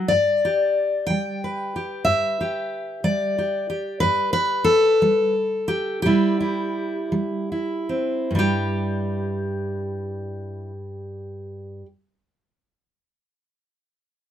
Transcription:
Already playing: F#3 F#5
0.08 G2 D5
0.45 G4
1.07 G3 G5
1.44 B4
1.76 G4
2.05 G2 E5
2.41 G4
3.04 G3 D5
3.38 G4
3.70 G4
4.00 G2 B4
4.33 B4
4.64 A4
5.02 G3
5.68 G4
6.02 C3 G3 G4
6.06 E4
6.40 E4
7.12 G3
7.52 E4
7.89 C4
8.31 G2
8.35 G3 G4

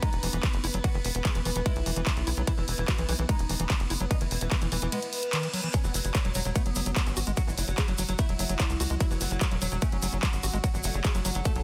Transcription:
Already playing: B3 B4
0.03 G#3 D#4, kick, closed hi-hat, ride
0.13 E1, closed hi-hat
0.23 E1 E3, open hi-hat
0.33 E1 E3, closed hi-hat
0.43 E3, kick, clap, closed hi-hat, ride
0.54 F#1, closed hi-hat
0.64 F#1 E4, open hi-hat
0.74 F#1 F#3, closed hi-hat
0.84 E3 F#4, kick, closed hi-hat, ride
0.94 F#1 D#3 B3
1.05 E1 B3, open hi-hat
1.15 E1 B3, closed hi-hat
1.25 E3 G#4, kick, clap, closed hi-hat, ride
1.35 E1 E3 B3, closed hi-hat
1.45 E1 E3 B3, open hi-hat
1.56 E1 E3 B3, closed hi-hat
1.66 G#3 E4, kick, closed hi-hat, ride
1.76 B1, closed hi-hat
1.86 E1 E3, open hi-hat
1.96 E1 E3, closed hi-hat
2.07 E3, kick, clap, closed hi-hat, ride
2.17 B1, closed hi-hat
2.27 B1 E4, open hi-hat
2.37 B1 F#3, closed hi-hat
2.47 E3 E4, kick, closed hi-hat, ride
2.58 E1 D#3 E3
2.68 E1 E3, open hi-hat
2.78 E1 E3, closed hi-hat
2.88 E3 F#4, kick, clap, closed hi-hat, ride
2.98 B1 E3, closed hi-hat
3.09 B1 E3, open hi-hat
3.19 B1 E3, closed hi-hat
3.29 G#3 D#4, kick, closed hi-hat, ride
3.39 E1, closed hi-hat
3.49 E1 E3, open hi-hat
3.60 E1 E3, closed hi-hat
3.70 E3, kick, clap, closed hi-hat, ride
3.80 F#1, closed hi-hat
3.90 F#1 E4, open hi-hat
4.00 F#1 F#3, closed hi-hat
4.11 E3 D#4, kick, closed hi-hat, ride
4.21 F#1 D#3 E3, closed hi-hat
4.31 E1 E3, open hi-hat
4.41 E1 E3, closed hi-hat
4.51 E3 B3, kick, clap, closed hi-hat, ride
4.62 E1 E3, closed hi-hat
4.72 E1 E3, open hi-hat
4.82 E1 E3, closed hi-hat
4.92 G#3 B3, closed hi-hat, ride, reverse cymbal
5.03 closed hi-hat
5.13 open hi-hat
5.23 closed hi-hat
5.33 D#3, clap, closed hi-hat, ride
5.43 E3, closed hi-hat
5.54 F#3, open hi-hat
5.64 E3, closed hi-hat
5.73 F#3 C#4 F#4, kick, closed hi-hat, ride, shaker
5.84 F#1 E3 F#3 B3, shaker
5.94 F#1 F#3, open hi-hat, shaker
6.05 F#1 F#3, closed hi-hat, shaker
6.15 F#3 C#4, kick, clap, closed hi-hat, ride, shaker
6.25 E1 F#3, closed hi-hat
6.35 E1 F#3, open hi-hat, shaker
6.45 E1 F#3, closed hi-hat, shaker
6.56 A3 B3, kick, closed hi-hat, ride, shaker
6.66 F#1 F#3, closed hi-hat
6.75 F#1 F#3, open hi-hat, shaker
6.86 F#1 F#3, closed hi-hat, shaker
6.96 F#3, kick, clap, closed hi-hat, ride, shaker
7.07 G#1 C#4, closed hi-hat, shaker
7.17 G#1 F#4, open hi-hat, shaker
7.27 G#1 G#3, closed hi-hat, shaker
7.37 F#3 F#4, kick, closed hi-hat, ride, shaker
7.47 G#1 E3 F#3 E4, shaker
7.58 F#1 F#3 E4, open hi-hat, shaker
7.68 F#1 F#3, closed hi-hat, shaker
7.78 F#3 G#4, kick, clap, closed hi-hat, ride, shaker
7.88 F#1 F#3, closed hi-hat
7.98 F#1 F#3, open hi-hat, shaker
8.08 F#1 F#3, closed hi-hat, shaker
8.19 A3 E4, kick, closed hi-hat, ride, shaker
8.29 E1 F#3, closed hi-hat
8.39 F#1 F#3, open hi-hat, shaker
8.49 F#1 F#3, closed hi-hat, shaker
8.60 F#3, kick, clap, closed hi-hat, ride, shaker
8.70 C#2, closed hi-hat, shaker
8.80 C#2 F#4, open hi-hat, shaker
8.90 C#2 G#3, closed hi-hat, shaker
9.00 F#3 E4, kick, closed hi-hat, ride, shaker
9.11 F#1 E3 F#3 B3, shaker
9.21 F#1 F#3, open hi-hat, shaker
9.31 F#1 F#3, closed hi-hat, shaker
9.41 F#3 A3 F#4, kick, clap, closed hi-hat, ride, shaker
9.51 E1 F#3 A3, closed hi-hat
9.61 E1 F#3, open hi-hat, shaker
9.72 E1 F#3, closed hi-hat, shaker
9.82 A3 C#4, kick, closed hi-hat, ride, shaker
9.92 F#1 F#3, closed hi-hat
10.02 F#1 F#3, open hi-hat, shaker
10.12 F#1 F#3, closed hi-hat, shaker
10.23 F#3, kick, clap, closed hi-hat, ride, shaker
10.33 G#1, closed hi-hat, shaker
10.43 G#1 F#4, open hi-hat, shaker
10.54 G#1 G#3, closed hi-hat, shaker
10.64 F#3 F#4, kick, closed hi-hat, ride, shaker
10.74 G#1 E3 F#3, shaker
10.84 F#1 F#3 A3, open hi-hat, shaker
10.94 F#1 F#3, closed hi-hat, shaker
11.04 F#3 G#4, kick, clap, closed hi-hat, ride, shaker
11.15 F#1 F#3, closed hi-hat, shaker
11.25 F#1 F#3, open hi-hat, shaker
11.35 F#1 F#3, closed hi-hat, shaker
11.45 A3 A4, kick, closed hi-hat, ride, shaker
11.56 B1 F#3, closed hi-hat

